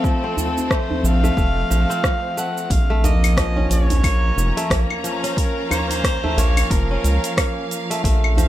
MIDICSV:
0, 0, Header, 1, 7, 480
1, 0, Start_track
1, 0, Key_signature, -5, "minor"
1, 0, Tempo, 666667
1, 31, Time_signature, 4, 2, 24, 8
1, 6106, End_track
2, 0, Start_track
2, 0, Title_t, "Kamancheh"
2, 0, Program_c, 0, 110
2, 31, Note_on_c, 0, 69, 90
2, 514, Note_on_c, 0, 72, 98
2, 525, Note_off_c, 0, 69, 0
2, 757, Note_on_c, 0, 77, 125
2, 768, Note_off_c, 0, 72, 0
2, 1716, Note_on_c, 0, 78, 99
2, 1727, Note_off_c, 0, 77, 0
2, 1954, Note_on_c, 0, 77, 106
2, 1964, Note_off_c, 0, 78, 0
2, 2194, Note_on_c, 0, 75, 104
2, 2205, Note_off_c, 0, 77, 0
2, 2665, Note_off_c, 0, 75, 0
2, 2670, Note_on_c, 0, 73, 108
2, 3601, Note_off_c, 0, 73, 0
2, 3829, Note_on_c, 0, 72, 69
2, 3869, Note_on_c, 0, 70, 95
2, 3880, Note_off_c, 0, 72, 0
2, 4104, Note_off_c, 0, 70, 0
2, 4109, Note_on_c, 0, 72, 100
2, 4163, Note_on_c, 0, 73, 80
2, 4173, Note_off_c, 0, 72, 0
2, 4229, Note_on_c, 0, 72, 105
2, 4240, Note_off_c, 0, 73, 0
2, 4598, Note_on_c, 0, 73, 105
2, 4609, Note_off_c, 0, 72, 0
2, 4831, Note_on_c, 0, 70, 101
2, 4842, Note_off_c, 0, 73, 0
2, 5551, Note_off_c, 0, 70, 0
2, 6106, End_track
3, 0, Start_track
3, 0, Title_t, "String section"
3, 0, Program_c, 1, 48
3, 0, Note_on_c, 1, 53, 86
3, 0, Note_on_c, 1, 60, 81
3, 0, Note_on_c, 1, 69, 77
3, 1951, Note_off_c, 1, 60, 0
3, 1951, Note_off_c, 1, 69, 0
3, 2315, Note_on_c, 1, 61, 70
3, 2860, Note_on_c, 1, 82, 75
3, 3686, Note_on_c, 1, 77, 78
3, 5789, Note_off_c, 1, 61, 0
3, 5789, Note_off_c, 1, 82, 0
3, 6009, Note_on_c, 1, 81, 71
3, 6106, Note_off_c, 1, 53, 0
3, 6106, Note_off_c, 1, 77, 0
3, 6106, Note_off_c, 1, 81, 0
3, 6106, End_track
4, 0, Start_track
4, 0, Title_t, "Kora"
4, 0, Program_c, 2, 46
4, 0, Note_on_c, 2, 57, 83
4, 0, Note_on_c, 2, 60, 93
4, 29, Note_on_c, 2, 53, 74
4, 168, Note_off_c, 2, 60, 0
4, 171, Note_on_c, 2, 60, 96
4, 504, Note_off_c, 2, 57, 0
4, 507, Note_on_c, 2, 57, 79
4, 887, Note_off_c, 2, 57, 0
4, 890, Note_on_c, 2, 57, 98
4, 985, Note_off_c, 2, 57, 0
4, 988, Note_on_c, 2, 57, 88
4, 1217, Note_off_c, 2, 53, 0
4, 1226, Note_on_c, 2, 53, 66
4, 1363, Note_off_c, 2, 60, 0
4, 1366, Note_on_c, 2, 60, 104
4, 1704, Note_off_c, 2, 57, 0
4, 1707, Note_on_c, 2, 57, 66
4, 1987, Note_off_c, 2, 53, 0
4, 2085, Note_off_c, 2, 57, 0
4, 2088, Note_on_c, 2, 57, 102
4, 2187, Note_on_c, 2, 58, 92
4, 2231, Note_off_c, 2, 57, 0
4, 2426, Note_on_c, 2, 53, 81
4, 2565, Note_on_c, 2, 61, 92
4, 2609, Note_off_c, 2, 60, 0
4, 2903, Note_off_c, 2, 58, 0
4, 2906, Note_on_c, 2, 58, 74
4, 3290, Note_on_c, 2, 57, 105
4, 3333, Note_off_c, 2, 58, 0
4, 3388, Note_on_c, 2, 58, 88
4, 3431, Note_off_c, 2, 57, 0
4, 3618, Note_off_c, 2, 53, 0
4, 3627, Note_on_c, 2, 53, 66
4, 3767, Note_off_c, 2, 61, 0
4, 3770, Note_on_c, 2, 61, 96
4, 4106, Note_off_c, 2, 58, 0
4, 4109, Note_on_c, 2, 58, 70
4, 4491, Note_on_c, 2, 57, 99
4, 4534, Note_off_c, 2, 58, 0
4, 4590, Note_on_c, 2, 58, 101
4, 4633, Note_off_c, 2, 57, 0
4, 4821, Note_off_c, 2, 53, 0
4, 4829, Note_on_c, 2, 53, 72
4, 4971, Note_off_c, 2, 61, 0
4, 4974, Note_on_c, 2, 61, 93
4, 5308, Note_off_c, 2, 58, 0
4, 5311, Note_on_c, 2, 58, 76
4, 5691, Note_on_c, 2, 57, 96
4, 5734, Note_off_c, 2, 58, 0
4, 5788, Note_off_c, 2, 57, 0
4, 5790, Note_on_c, 2, 57, 89
4, 5827, Note_off_c, 2, 53, 0
4, 6030, Note_on_c, 2, 53, 74
4, 6106, Note_off_c, 2, 53, 0
4, 6106, Note_off_c, 2, 57, 0
4, 6106, Note_off_c, 2, 61, 0
4, 6106, End_track
5, 0, Start_track
5, 0, Title_t, "Analog synth bass"
5, 0, Program_c, 3, 38
5, 745, Note_on_c, 3, 34, 91
5, 936, Note_off_c, 3, 34, 0
5, 986, Note_on_c, 3, 29, 75
5, 1177, Note_off_c, 3, 29, 0
5, 1228, Note_on_c, 3, 34, 84
5, 1334, Note_off_c, 3, 34, 0
5, 1947, Note_on_c, 3, 34, 104
5, 2627, Note_off_c, 3, 34, 0
5, 2665, Note_on_c, 3, 34, 95
5, 3106, Note_off_c, 3, 34, 0
5, 3144, Note_on_c, 3, 29, 103
5, 3252, Note_off_c, 3, 29, 0
5, 3385, Note_on_c, 3, 34, 84
5, 3492, Note_off_c, 3, 34, 0
5, 4587, Note_on_c, 3, 34, 95
5, 4777, Note_off_c, 3, 34, 0
5, 4828, Note_on_c, 3, 29, 74
5, 5017, Note_off_c, 3, 29, 0
5, 5069, Note_on_c, 3, 37, 88
5, 5174, Note_off_c, 3, 37, 0
5, 5789, Note_on_c, 3, 34, 97
5, 6106, Note_off_c, 3, 34, 0
5, 6106, End_track
6, 0, Start_track
6, 0, Title_t, "Djembe"
6, 266, Note_on_c, 9, 62, 43
6, 266, Note_on_c, 9, 64, 86
6, 338, Note_off_c, 9, 62, 0
6, 338, Note_off_c, 9, 64, 0
6, 416, Note_on_c, 9, 63, 65
6, 488, Note_off_c, 9, 63, 0
6, 649, Note_on_c, 9, 63, 58
6, 652, Note_on_c, 9, 64, 93
6, 721, Note_off_c, 9, 63, 0
6, 724, Note_off_c, 9, 64, 0
6, 753, Note_on_c, 9, 62, 58
6, 825, Note_off_c, 9, 62, 0
6, 886, Note_on_c, 9, 64, 76
6, 889, Note_on_c, 9, 63, 54
6, 890, Note_on_c, 9, 62, 54
6, 958, Note_off_c, 9, 64, 0
6, 961, Note_off_c, 9, 63, 0
6, 962, Note_off_c, 9, 62, 0
6, 2187, Note_on_c, 9, 64, 88
6, 2194, Note_on_c, 9, 62, 49
6, 2259, Note_off_c, 9, 64, 0
6, 2266, Note_off_c, 9, 62, 0
6, 2328, Note_on_c, 9, 63, 61
6, 2400, Note_off_c, 9, 63, 0
6, 2567, Note_on_c, 9, 64, 78
6, 2570, Note_on_c, 9, 63, 54
6, 2639, Note_off_c, 9, 64, 0
6, 2642, Note_off_c, 9, 63, 0
6, 2663, Note_on_c, 9, 62, 60
6, 2735, Note_off_c, 9, 62, 0
6, 2811, Note_on_c, 9, 62, 58
6, 2811, Note_on_c, 9, 63, 49
6, 2811, Note_on_c, 9, 64, 78
6, 2883, Note_off_c, 9, 62, 0
6, 2883, Note_off_c, 9, 63, 0
6, 2883, Note_off_c, 9, 64, 0
6, 3149, Note_on_c, 9, 63, 54
6, 3154, Note_on_c, 9, 62, 27
6, 3221, Note_off_c, 9, 63, 0
6, 3226, Note_off_c, 9, 62, 0
6, 3528, Note_on_c, 9, 62, 61
6, 3600, Note_off_c, 9, 62, 0
6, 4110, Note_on_c, 9, 64, 92
6, 4111, Note_on_c, 9, 62, 44
6, 4182, Note_off_c, 9, 64, 0
6, 4183, Note_off_c, 9, 62, 0
6, 4244, Note_on_c, 9, 63, 63
6, 4316, Note_off_c, 9, 63, 0
6, 4494, Note_on_c, 9, 63, 55
6, 4494, Note_on_c, 9, 64, 85
6, 4566, Note_off_c, 9, 63, 0
6, 4566, Note_off_c, 9, 64, 0
6, 4591, Note_on_c, 9, 62, 64
6, 4663, Note_off_c, 9, 62, 0
6, 4727, Note_on_c, 9, 63, 48
6, 4732, Note_on_c, 9, 62, 61
6, 4799, Note_off_c, 9, 63, 0
6, 4804, Note_off_c, 9, 62, 0
6, 6029, Note_on_c, 9, 64, 86
6, 6031, Note_on_c, 9, 62, 52
6, 6101, Note_off_c, 9, 64, 0
6, 6103, Note_off_c, 9, 62, 0
6, 6106, End_track
7, 0, Start_track
7, 0, Title_t, "Drums"
7, 29, Note_on_c, 9, 36, 103
7, 34, Note_on_c, 9, 69, 30
7, 101, Note_off_c, 9, 36, 0
7, 106, Note_off_c, 9, 69, 0
7, 275, Note_on_c, 9, 69, 77
7, 347, Note_off_c, 9, 69, 0
7, 415, Note_on_c, 9, 69, 40
7, 487, Note_off_c, 9, 69, 0
7, 508, Note_on_c, 9, 36, 99
7, 509, Note_on_c, 9, 37, 95
7, 515, Note_on_c, 9, 69, 33
7, 580, Note_off_c, 9, 36, 0
7, 581, Note_off_c, 9, 37, 0
7, 587, Note_off_c, 9, 69, 0
7, 755, Note_on_c, 9, 69, 79
7, 827, Note_off_c, 9, 69, 0
7, 896, Note_on_c, 9, 69, 44
7, 968, Note_off_c, 9, 69, 0
7, 987, Note_on_c, 9, 36, 104
7, 994, Note_on_c, 9, 69, 35
7, 1059, Note_off_c, 9, 36, 0
7, 1066, Note_off_c, 9, 69, 0
7, 1233, Note_on_c, 9, 69, 78
7, 1305, Note_off_c, 9, 69, 0
7, 1374, Note_on_c, 9, 69, 47
7, 1446, Note_off_c, 9, 69, 0
7, 1467, Note_on_c, 9, 36, 103
7, 1468, Note_on_c, 9, 37, 92
7, 1473, Note_on_c, 9, 69, 33
7, 1539, Note_off_c, 9, 36, 0
7, 1540, Note_off_c, 9, 37, 0
7, 1545, Note_off_c, 9, 69, 0
7, 1712, Note_on_c, 9, 69, 74
7, 1784, Note_off_c, 9, 69, 0
7, 1853, Note_on_c, 9, 69, 41
7, 1925, Note_off_c, 9, 69, 0
7, 1946, Note_on_c, 9, 36, 98
7, 1949, Note_on_c, 9, 46, 51
7, 1954, Note_on_c, 9, 69, 32
7, 2018, Note_off_c, 9, 36, 0
7, 2021, Note_off_c, 9, 46, 0
7, 2026, Note_off_c, 9, 69, 0
7, 2189, Note_on_c, 9, 46, 28
7, 2195, Note_on_c, 9, 69, 71
7, 2261, Note_off_c, 9, 46, 0
7, 2267, Note_off_c, 9, 69, 0
7, 2332, Note_on_c, 9, 46, 38
7, 2332, Note_on_c, 9, 75, 70
7, 2338, Note_on_c, 9, 69, 41
7, 2404, Note_off_c, 9, 46, 0
7, 2404, Note_off_c, 9, 75, 0
7, 2410, Note_off_c, 9, 69, 0
7, 2426, Note_on_c, 9, 36, 91
7, 2430, Note_on_c, 9, 37, 95
7, 2430, Note_on_c, 9, 46, 53
7, 2436, Note_on_c, 9, 69, 32
7, 2498, Note_off_c, 9, 36, 0
7, 2502, Note_off_c, 9, 37, 0
7, 2502, Note_off_c, 9, 46, 0
7, 2508, Note_off_c, 9, 69, 0
7, 2670, Note_on_c, 9, 46, 48
7, 2675, Note_on_c, 9, 69, 71
7, 2742, Note_off_c, 9, 46, 0
7, 2747, Note_off_c, 9, 69, 0
7, 2810, Note_on_c, 9, 46, 38
7, 2815, Note_on_c, 9, 69, 39
7, 2882, Note_off_c, 9, 46, 0
7, 2887, Note_off_c, 9, 69, 0
7, 2906, Note_on_c, 9, 36, 92
7, 2910, Note_on_c, 9, 46, 53
7, 2910, Note_on_c, 9, 75, 81
7, 2915, Note_on_c, 9, 69, 31
7, 2978, Note_off_c, 9, 36, 0
7, 2982, Note_off_c, 9, 46, 0
7, 2982, Note_off_c, 9, 75, 0
7, 2987, Note_off_c, 9, 69, 0
7, 3156, Note_on_c, 9, 69, 76
7, 3228, Note_off_c, 9, 69, 0
7, 3293, Note_on_c, 9, 46, 42
7, 3299, Note_on_c, 9, 69, 45
7, 3365, Note_off_c, 9, 46, 0
7, 3371, Note_off_c, 9, 69, 0
7, 3387, Note_on_c, 9, 36, 97
7, 3392, Note_on_c, 9, 37, 97
7, 3392, Note_on_c, 9, 46, 49
7, 3397, Note_on_c, 9, 69, 32
7, 3459, Note_off_c, 9, 36, 0
7, 3464, Note_off_c, 9, 37, 0
7, 3464, Note_off_c, 9, 46, 0
7, 3469, Note_off_c, 9, 69, 0
7, 3531, Note_on_c, 9, 75, 74
7, 3603, Note_off_c, 9, 75, 0
7, 3630, Note_on_c, 9, 46, 29
7, 3636, Note_on_c, 9, 69, 72
7, 3702, Note_off_c, 9, 46, 0
7, 3708, Note_off_c, 9, 69, 0
7, 3773, Note_on_c, 9, 46, 41
7, 3779, Note_on_c, 9, 69, 40
7, 3845, Note_off_c, 9, 46, 0
7, 3851, Note_off_c, 9, 69, 0
7, 3867, Note_on_c, 9, 36, 95
7, 3873, Note_on_c, 9, 46, 54
7, 3879, Note_on_c, 9, 69, 29
7, 3939, Note_off_c, 9, 36, 0
7, 3945, Note_off_c, 9, 46, 0
7, 3951, Note_off_c, 9, 69, 0
7, 4114, Note_on_c, 9, 46, 28
7, 4114, Note_on_c, 9, 75, 77
7, 4119, Note_on_c, 9, 69, 69
7, 4186, Note_off_c, 9, 46, 0
7, 4186, Note_off_c, 9, 75, 0
7, 4191, Note_off_c, 9, 69, 0
7, 4253, Note_on_c, 9, 46, 40
7, 4258, Note_on_c, 9, 69, 38
7, 4325, Note_off_c, 9, 46, 0
7, 4330, Note_off_c, 9, 69, 0
7, 4348, Note_on_c, 9, 36, 86
7, 4353, Note_on_c, 9, 37, 91
7, 4353, Note_on_c, 9, 46, 57
7, 4358, Note_on_c, 9, 69, 31
7, 4420, Note_off_c, 9, 36, 0
7, 4425, Note_off_c, 9, 37, 0
7, 4425, Note_off_c, 9, 46, 0
7, 4430, Note_off_c, 9, 69, 0
7, 4594, Note_on_c, 9, 46, 49
7, 4599, Note_on_c, 9, 69, 74
7, 4666, Note_off_c, 9, 46, 0
7, 4671, Note_off_c, 9, 69, 0
7, 4732, Note_on_c, 9, 46, 40
7, 4732, Note_on_c, 9, 75, 80
7, 4737, Note_on_c, 9, 69, 43
7, 4804, Note_off_c, 9, 46, 0
7, 4804, Note_off_c, 9, 75, 0
7, 4809, Note_off_c, 9, 69, 0
7, 4829, Note_on_c, 9, 36, 96
7, 4832, Note_on_c, 9, 46, 54
7, 4837, Note_on_c, 9, 69, 33
7, 4901, Note_off_c, 9, 36, 0
7, 4904, Note_off_c, 9, 46, 0
7, 4909, Note_off_c, 9, 69, 0
7, 5072, Note_on_c, 9, 46, 29
7, 5077, Note_on_c, 9, 69, 69
7, 5144, Note_off_c, 9, 46, 0
7, 5149, Note_off_c, 9, 69, 0
7, 5212, Note_on_c, 9, 46, 43
7, 5218, Note_on_c, 9, 69, 43
7, 5284, Note_off_c, 9, 46, 0
7, 5290, Note_off_c, 9, 69, 0
7, 5309, Note_on_c, 9, 36, 93
7, 5312, Note_on_c, 9, 37, 89
7, 5312, Note_on_c, 9, 46, 54
7, 5312, Note_on_c, 9, 75, 78
7, 5317, Note_on_c, 9, 69, 30
7, 5381, Note_off_c, 9, 36, 0
7, 5384, Note_off_c, 9, 37, 0
7, 5384, Note_off_c, 9, 46, 0
7, 5384, Note_off_c, 9, 75, 0
7, 5389, Note_off_c, 9, 69, 0
7, 5553, Note_on_c, 9, 46, 28
7, 5559, Note_on_c, 9, 69, 74
7, 5625, Note_off_c, 9, 46, 0
7, 5631, Note_off_c, 9, 69, 0
7, 5696, Note_on_c, 9, 46, 42
7, 5701, Note_on_c, 9, 69, 42
7, 5768, Note_off_c, 9, 46, 0
7, 5773, Note_off_c, 9, 69, 0
7, 5789, Note_on_c, 9, 36, 99
7, 5796, Note_on_c, 9, 46, 52
7, 5802, Note_on_c, 9, 69, 30
7, 5861, Note_off_c, 9, 36, 0
7, 5868, Note_off_c, 9, 46, 0
7, 5874, Note_off_c, 9, 69, 0
7, 5934, Note_on_c, 9, 75, 74
7, 6006, Note_off_c, 9, 75, 0
7, 6034, Note_on_c, 9, 46, 30
7, 6040, Note_on_c, 9, 69, 72
7, 6106, Note_off_c, 9, 46, 0
7, 6106, Note_off_c, 9, 69, 0
7, 6106, End_track
0, 0, End_of_file